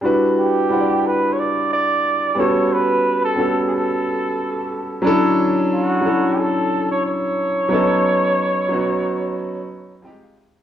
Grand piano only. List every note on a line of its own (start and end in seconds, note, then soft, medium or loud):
0.01 0.62 G3 medium
0.01 0.62 D4 medium
0.01 0.63 E4 medium
0.01 0.63 F#4 medium
0.06 0.64 B4 medium
0.69 1.88 G3 medium
0.69 1.89 D4 medium
0.69 1.89 E4 medium
0.69 1.90 F#5 medium
0.74 0.79 C5 medium
0.80 1.94 D5 medium
2.35 3.25 G3 medium
2.35 3.25 B3 medium
2.35 3.26 C#4 medium
2.35 3.27 F#4 medium
2.40 3.27 A4 medium
3.35 4.55 G3 medium
3.35 4.55 B3 medium
3.35 4.56 C#4 medium
3.35 4.56 F#4 medium
3.40 4.57 A4 medium
5.02 5.92 F#3 medium
5.02 5.92 C#4 medium
5.02 5.93 D4 medium
5.02 5.94 E4 medium
5.07 5.94 A4 loud
6.01 7.21 F#3 medium
6.01 7.22 C#4 medium
6.01 7.22 D4 medium
6.01 7.23 E4 medium
6.06 7.23 A4 medium
7.69 8.58 F#3 medium
7.69 8.59 B3 medium
7.69 8.60 C#4 medium
7.69 8.60 D#4 medium
7.74 8.61 A4 medium
8.69 9.88 F#3 medium
8.69 9.89 B3 medium
8.69 9.89 C#4 medium
8.69 9.90 D#4 medium
8.73 9.91 F#4 medium
10.02 10.62 F3 medium
10.02 10.11 G3 medium
10.02 10.63 C4 medium
10.02 10.63 D#4 medium
10.02 10.22 G5 medium
10.07 10.63 G#3 medium
10.07 10.63 G4 medium
10.23 10.36 F5 medium
10.38 10.63 D#5 medium